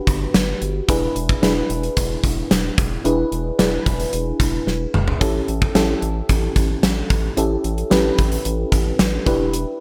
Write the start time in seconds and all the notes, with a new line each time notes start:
Already playing: D4 F#4 G4 B4
0.07 G1, kick, closed hi-hat
0.34 G1, snare, closed hi-hat
0.62 G1, closed hi-hat
0.88 E1 D4 E4 G#4 B4, kick, closed hi-hat
1.16 E1, closed hi-hat
1.29 kick
1.42 E1 D4 E4 G#4 B4, snare, closed hi-hat
1.70 E1, closed hi-hat
1.83 closed hi-hat
1.97 E1, kick, closed hi-hat
2.24 E1, kick, closed hi-hat
2.51 E1, snare, closed hi-hat
2.78 E1, kick, closed hi-hat
3.05 E1 D4 E4 G#4 B4, closed hi-hat
3.32 E1, closed hi-hat
3.59 E1 D4 E4 G#4 B4, snare, closed hi-hat
3.86 E1, kick, closed hi-hat
4.00 closed hi-hat
4.13 E1, closed hi-hat
4.40 E1, kick, closed hi-hat
4.67 E1, snare
4.94 E1, mid tom
5.08 floor tom
5.21 A1 C#4 E4 G4 A4, kick, closed hi-hat
5.48 A1, closed hi-hat
5.62 kick
5.75 A1 C#4 E4 G4 A4, snare, closed hi-hat
6.02 A1, closed hi-hat
6.29 A1, kick, closed hi-hat
6.56 A1, kick, closed hi-hat
6.83 A1, snare, closed hi-hat
7.10 A1, kick, closed hi-hat
7.37 A1 C#4 E4 G4 A4, closed hi-hat
7.64 A1, closed hi-hat
7.78 closed hi-hat
7.90 A1 C#4 E4 G4 B4, snare, closed hi-hat
8.18 A1, kick, closed hi-hat
8.32 closed hi-hat
8.45 A1, closed hi-hat
8.72 A1, kick, closed hi-hat
8.99 A1, snare, closed hi-hat
9.26 E1 D4 E4 G4 B4, kick, closed hi-hat
9.53 closed hi-hat